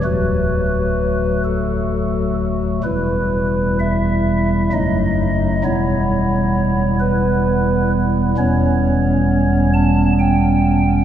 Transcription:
0.04 2.80 D1 medium
0.04 2.80 D2 medium
0.04 2.80 F#3 medium
0.04 2.80 A3 soft
0.04 2.80 F#4 soft
0.04 1.41 B4 medium
1.45 2.34 A4 medium
2.83 4.69 E1 medium
2.83 4.69 E2 medium
2.83 4.69 G3 soft
2.83 4.69 E4 medium
2.83 3.77 B4 medium
3.79 4.70 E5 loud
4.72 5.62 F#1 medium
4.72 5.62 F#2 medium
4.72 5.62 F#3 medium
4.72 5.61 A3 medium
4.72 5.62 D#4 medium
4.72 5.62 D#5 loud
5.64 8.34 E1 medium
5.64 8.34 E2 medium
5.64 8.34 G3 medium
5.64 8.34 B3 medium
5.64 8.34 E4 medium
5.64 6.96 C#5 loud
7.00 7.90 B4 loud
8.38 11.04 E1 medium
8.38 11.04 E2 medium
8.38 11.04 G3 medium
8.38 11.04 B3 medium
8.38 11.04 C#4 medium
8.38 9.70 C#5 loud
9.74 10.12 A5 loud
10.19 11.04 G5 loud

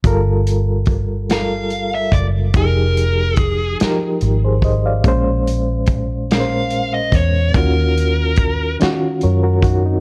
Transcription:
0.04 2.09 G1 loud
0.04 0.95 G3 medium
0.04 0.95 F4 medium
0.04 0.96 A4 medium
0.04 0.96 A#4 loud
0.04 kick loud
0.04 closed hi-hat medium
0.47 closed hi-hat medium
0.86 kick loud
0.86 closed hi-hat soft
1.30 2.20 G3 medium
1.30 2.20 F4 medium
1.30 2.21 A4 medium
1.30 2.22 A#4 medium
1.30 1.94 F5 loud
1.30 snare loud
1.30 closed hi-hat medium
1.70 closed hi-hat soft
1.95 2.13 E5 medium
2.12 2.51 F#1 medium
2.12 2.25 D5 medium
2.12 kick medium
2.12 closed hi-hat medium
2.54 3.76 F1 medium
2.54 3.45 F3 medium
2.54 3.46 D#4 medium
2.54 3.46 G4 medium
2.54 3.39 A#4 medium
2.54 kick loud
2.54 closed hi-hat medium
2.58 3.47 G#4 medium
2.97 closed hi-hat medium
3.36 3.77 G#4 medium
3.36 kick loud
3.36 closed hi-hat medium
3.80 4.71 F3 medium
3.80 4.71 D#4 medium
3.80 4.23 G4 medium
3.80 muted fingered electric bass stroke soft
3.80 snare loud
3.80 closed hi-hat medium
3.84 4.24 A#4 medium
4.21 5.01 G#1 medium
4.21 closed hi-hat soft
4.45 4.64 G#4 medium
4.45 4.63 C5 medium
4.62 4.84 C5 medium
4.62 4.84 D#5 medium
4.62 kick medium
4.62 closed hi-hat medium
4.86 5.25 D5 medium
4.86 5.24 F5 medium
5.04 7.09 A#1 medium
5.04 5.95 A#2 medium
5.04 5.96 G#3 medium
5.04 5.96 C#4 medium
5.04 5.97 C5 loud
5.04 kick loud
5.04 closed hi-hat medium
5.48 closed hi-hat medium
5.86 kick loud
5.86 closed hi-hat medium
6.30 7.21 A#2 medium
6.30 7.21 G#3 medium
6.30 7.22 C#4 medium
6.30 6.38 A#4 medium
6.30 6.93 F5 loud
6.30 snare loud
6.30 closed hi-hat medium
6.40 7.25 C5 medium
6.70 closed hi-hat soft
6.94 7.14 D#5 medium
7.12 7.51 E2 medium
7.12 7.56 C#5 medium
7.12 kick medium
7.12 closed hi-hat medium
7.54 8.76 D#2 loud
7.54 8.46 D#3 medium
7.54 8.46 C#4 medium
7.54 8.46 F4 medium
7.54 8.47 F#4 medium
7.54 8.76 A#4 medium
7.54 kick loud
7.54 closed hi-hat medium
7.98 closed hi-hat medium
8.36 kick loud
8.36 closed hi-hat soft
8.80 9.70 D#3 medium
8.80 9.22 C#4 medium
8.80 9.23 F4 medium
8.80 9.23 F#4 medium
8.80 muted fingered electric bass stroke soft
8.80 snare loud
8.80 closed hi-hat medium
9.21 10.00 F#2 medium
9.21 9.42 A#4 medium
9.21 9.42 C#5 medium
9.21 closed hi-hat soft
9.43 9.63 F#4 medium
9.43 9.63 A#4 medium
9.63 9.84 D#4 medium
9.63 9.83 F#4 medium
9.63 kick medium
9.63 closed hi-hat medium
9.86 10.00 C4 medium
9.86 10.00 D#4 medium

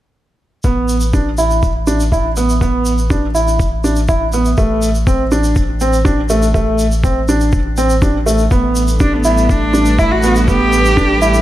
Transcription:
0.64 4.55 A1 medium
0.64 0.94 B3 medium
0.64 kick medium
0.64 shaker soft
0.89 shaker medium
1.00 shaker medium
1.13 1.28 D4 medium
1.13 kick medium
1.13 shaker soft
1.38 1.68 E4 medium
1.38 shaker medium
1.50 shaker soft
1.63 kick medium
1.63 shaker soft
1.87 2.02 D4 medium
1.87 shaker medium
2.00 shaker medium
2.12 2.27 E4 medium
2.12 kick medium
2.12 shaker soft
2.36 2.52 B3 medium
2.36 shaker medium
2.49 shaker medium
2.61 2.91 B3 medium
2.61 kick medium
2.61 shaker soft
2.85 shaker medium
2.98 shaker soft
3.10 3.25 D4 medium
3.10 kick medium
3.10 shaker soft
3.35 3.64 E4 medium
3.35 shaker medium
3.48 shaker medium
3.59 kick medium
3.59 shaker soft
3.84 3.99 D4 medium
3.84 shaker medium
3.96 shaker medium
4.08 4.23 E4 medium
4.08 kick medium
4.08 shaker soft
4.32 4.48 B3 medium
4.32 shaker medium
4.45 shaker soft
4.57 8.49 A1 medium
4.57 4.87 A3 medium
4.57 kick loud
4.57 shaker soft
4.82 shaker medium
4.94 shaker medium
5.07 5.22 C4 medium
5.07 kick loud
5.07 shaker medium
5.32 5.61 D4 medium
5.32 shaker medium
5.44 shaker medium
5.55 kick medium
5.55 shaker soft
5.80 5.96 C4 medium
5.80 shaker medium
5.93 shaker medium
6.05 6.20 D4 medium
6.05 kick medium
6.05 shaker soft
6.29 6.45 A3 medium
6.29 shaker medium
6.42 shaker medium
6.54 6.84 A3 medium
6.54 kick medium
6.54 shaker soft
6.79 shaker medium
6.92 shaker soft
7.04 7.19 C4 medium
7.04 kick loud
7.04 shaker soft
7.28 7.58 D4 medium
7.28 shaker medium
7.40 shaker soft
7.52 kick medium
7.52 shaker soft
7.77 7.92 C4 medium
7.77 shaker medium
7.90 shaker medium
8.02 8.17 D4 medium
8.02 kick loud
8.02 shaker soft
8.26 8.41 A3 medium
8.26 shaker medium
8.38 shaker soft
8.51 11.42 A1 medium
8.51 11.42 A3 medium
8.51 8.81 B3 medium
8.51 kick medium
8.51 shaker soft
8.73 11.42 D4 medium
8.73 shaker medium
8.85 11.42 G3 medium
8.85 shaker medium
9.00 9.15 D4 medium
9.00 kick medium
9.00 shaker soft
9.13 9.52 B3 medium
9.24 9.54 E4 medium
9.24 shaker medium
9.38 shaker soft
9.49 10.00 D4 medium
9.49 kick medium
9.49 shaker soft
9.68 11.42 B4 medium
9.74 9.88 D4 medium
9.74 shaker medium
9.85 shaker soft
9.99 10.14 E4 medium
9.99 10.13 E4 loud
9.99 kick medium
9.99 shaker soft
10.11 10.50 F#4 loud
10.23 10.38 B3 medium
10.23 shaker medium
10.35 shaker soft
10.48 10.78 B3 medium
10.48 11.42 G4 loud
10.48 kick medium
10.48 shaker soft
10.72 shaker medium
10.85 shaker soft
10.97 11.12 D4 medium
10.97 kick medium
10.97 shaker soft
11.22 11.42 E4 medium
11.22 shaker medium
11.34 shaker medium

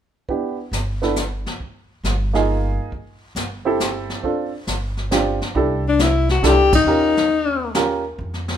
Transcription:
0.29 0.56 B3 soft
0.29 0.56 D4 soft
0.29 0.56 E4 soft
0.29 0.56 G4 soft
0.29 brush sweep soft
0.29 kick soft
0.72 1.45 G1 medium
0.72 snare soft
0.72 hi-hat pedal soft
1.02 1.15 B3 medium
1.02 1.15 D4 medium
1.02 1.15 E4 soft
1.02 1.16 A4 medium
1.02 snare soft
1.16 snare soft
1.16 hi-hat pedal medium
1.46 snare soft
1.60 brush sweep soft
1.60 kick soft
2.04 2.77 G1 medium
2.04 snare soft
2.04 hi-hat pedal soft
2.33 2.89 A#3 medium
2.33 2.89 D#4 medium
2.33 2.90 F4 medium
2.33 2.90 G#4 medium
2.33 snare soft
2.92 brush sweep soft
2.92 kick soft
3.35 4.08 G1 medium
3.35 snare soft
3.35 hi-hat pedal medium
3.65 4.21 C4 medium
3.65 4.21 E4 medium
3.65 4.21 G4 medium
3.65 4.21 A4 medium
3.80 snare soft
3.80 hi-hat pedal medium
4.10 snare soft
4.23 4.50 C4 medium
4.23 4.51 D4 soft
4.23 4.51 F4 soft
4.23 4.51 A4 medium
4.23 brush sweep soft
4.23 kick soft
4.67 5.40 G1 medium
4.67 snare soft
4.67 hi-hat pedal soft
4.97 snare soft
5.11 5.38 C4 medium
5.11 5.38 D4 medium
5.11 5.39 F4 medium
5.11 5.39 G4 medium
5.11 snare medium
5.11 hi-hat pedal medium
5.41 snare soft
5.55 6.39 C2 medium
5.55 5.82 D4 medium
5.55 5.82 E4 medium
5.55 5.82 G4 medium
5.55 5.83 A4 medium
5.55 brush sweep soft
5.55 kick soft
5.88 6.03 D4 medium
5.99 6.30 E4 medium
5.99 snare soft
5.99 hi-hat pedal medium
6.29 6.48 F#4 medium
6.29 snare soft
6.43 6.84 C2 medium
6.43 6.70 D4 medium
6.43 6.70 E4 medium
6.43 6.70 G4 medium
6.43 6.75 G4 medium
6.43 6.70 A4 medium
6.43 snare medium
6.43 hi-hat pedal medium
6.73 7.72 D#4 medium
6.73 kick medium
6.73 ride medium
6.85 8.14 D#2 medium
6.85 7.13 C#4 medium
6.85 7.14 F4 soft
6.85 7.14 G4 medium
6.85 7.14 A#4 medium
6.85 brush sweep soft
7.17 snare soft
7.75 8.02 C#4 medium
7.75 8.02 F4 medium
7.75 8.02 G4 medium
7.75 8.02 A#4 medium
7.75 snare medium
7.75 hi-hat pedal medium
8.18 8.57 F2 medium
8.18 brush sweep soft
8.18 kick soft
8.34 snare soft
8.48 snare soft

